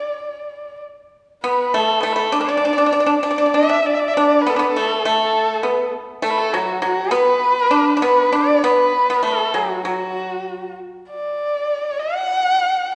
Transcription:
0.00 0.78 D4 medium
0.00 0.80 D5 loud
1.44 1.71 B3 medium
1.44 1.75 B4 medium
1.74 1.99 A3 medium
1.74 2.04 A4 medium
2.01 2.15 A3 medium
2.01 2.04 B3 soft
2.05 2.14 A4 medium
2.12 2.32 A3 medium
2.12 2.21 B4 medium
2.19 2.34 A4 medium
2.32 2.39 D4 medium
2.32 3.21 D5 medium
2.41 2.47 D4 soft
2.49 2.55 D4 medium
2.57 2.64 D4 soft
2.65 2.71 D4 medium
2.73 2.77 D4 soft
2.78 2.85 D4 medium
2.86 2.91 D4 soft
2.93 2.99 D4 medium
3.00 3.05 D4 soft
3.06 3.14 D4 medium
3.23 3.29 D4 medium
3.23 3.56 D5 medium
3.31 3.37 D4 soft
3.38 3.45 D4 medium
3.46 3.53 D4 soft
3.54 3.61 D4 medium
3.54 3.87 E5 medium
3.62 3.68 D4 soft
3.69 3.76 D4 medium
3.86 3.96 D5 medium
3.94 4.01 E5 medium
3.99 4.10 D5 medium
4.08 4.15 E5 medium
4.14 4.43 D4 medium
4.14 4.43 D5 medium
4.41 4.51 B4 medium
4.46 4.54 B3 medium
4.46 4.56 A4 medium
4.55 4.59 D4 soft
4.55 4.70 B4 medium
4.59 4.73 B3 medium
4.71 5.00 A4 medium
4.76 5.03 A3 medium
5.01 5.87 A4 medium
5.05 5.60 A3 medium
5.63 5.91 B3 medium
6.22 6.50 A3 medium
6.22 6.32 A4 medium
6.30 6.40 B4 medium
6.38 6.55 A4 medium
6.53 6.81 F#3 medium
6.53 6.82 F#4 medium
6.82 7.10 F#3 medium
6.82 7.14 F#4 medium
7.11 7.68 B3 medium
7.11 8.02 B4 medium
7.71 7.93 D4 medium
7.97 8.02 D4 soft
8.02 8.31 B3 medium
8.02 8.37 B4 medium
8.32 8.61 D4 medium
8.32 8.66 D5 medium
8.64 9.06 B3 medium
8.64 9.29 B4 medium
9.10 9.24 B3 medium
9.23 9.52 A3 medium
9.27 9.58 A4 medium
9.54 9.83 F#3 medium
9.54 9.86 F#4 medium
9.85 10.74 F#3 soft
9.85 10.75 F#4 medium
11.10 12.00 D5 medium
11.99 12.92 F#5 medium

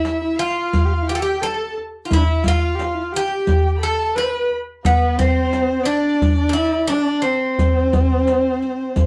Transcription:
0.00 0.22 E4 medium
0.00 0.39 E4 medium
0.00 0.39 E5 medium
0.05 riq soft
0.05 darbuka tek medium
0.24 0.41 E4 medium
0.39 1.09 F4 medium
0.39 0.87 F4 medium
0.39 1.08 F5 medium
0.39 riq soft
0.73 riq medium
0.73 darbuka dum medium
0.85 0.95 G4 medium
0.92 1.04 F4 medium
0.92 darbuka ka soft
1.02 1.13 E4 medium
1.09 1.22 F4 medium
1.09 1.15 G4 medium
1.09 1.22 G5 medium
1.15 1.22 A4 medium
1.20 1.42 G4 medium
1.20 1.43 G4 medium
1.20 1.41 G5 medium
1.41 1.76 A4 medium
1.41 1.74 A4 medium
1.41 1.76 A5 medium
1.41 riq soft
1.41 darbuka tek medium
1.78 darbuka ka soft
2.05 2.11 F4 soft
2.10 2.18 E4 medium
2.10 2.44 E4 medium
2.10 2.42 E5 medium
2.10 riq medium
2.10 darbuka dum loud
2.17 2.26 D4 medium
2.24 2.44 E4 medium
2.24 riq soft
2.43 2.77 F4 medium
2.43 3.14 F5 medium
2.43 riq medium
2.43 darbuka dum medium
2.48 3.16 F4 medium
2.75 2.86 G4 medium
2.79 riq medium
2.79 darbuka tek medium
2.85 2.96 F4 medium
2.94 3.05 E4 medium
3.03 3.14 F4 medium
3.12 3.81 G4 medium
3.12 3.72 G5 medium
3.12 riq soft
3.16 3.83 G4 medium
3.47 riq medium
3.47 darbuka dum loud
3.66 darbuka ka soft
3.76 3.83 B5 medium
3.81 4.17 A4 medium
3.81 4.17 A5 medium
4.15 4.24 B4 medium
4.15 4.49 B4 medium
4.15 4.51 B5 medium
4.15 riq soft
4.15 darbuka tek medium
4.23 4.32 C5 medium
4.30 4.51 B4 medium
4.51 darbuka ka soft
4.85 5.19 B3 medium
4.85 5.17 B3 medium
4.85 5.17 B4 medium
4.85 riq medium
4.85 darbuka dum loud
5.02 riq soft
5.18 5.88 C4 medium
5.18 5.85 C4 medium
5.18 5.87 C5 medium
5.18 riq medium
5.18 darbuka dum medium
5.53 riq medium
5.53 darbuka tek medium
5.85 6.48 D4 medium
5.85 6.38 D4 medium
5.85 6.90 D5 medium
5.85 riq soft
6.22 riq medium
6.22 darbuka dum medium
6.39 6.58 D4 medium
6.49 6.53 D4 medium
6.49 6.87 E4 medium
6.57 6.91 E4 medium
6.87 7.24 D4 loud
6.87 7.26 D4 medium
6.87 7.23 D5 medium
6.87 riq medium
6.87 darbuka tek medium
7.22 9.06 C4 medium
7.22 9.06 C5 medium
7.22 darbuka ka soft
7.59 riq medium
7.59 darbuka dum medium
7.76 darbuka ka soft
7.93 riq medium
7.93 darbuka dum medium
8.27 riq soft
8.27 darbuka tek medium
8.62 riq soft
8.96 riq medium
8.96 darbuka dum medium

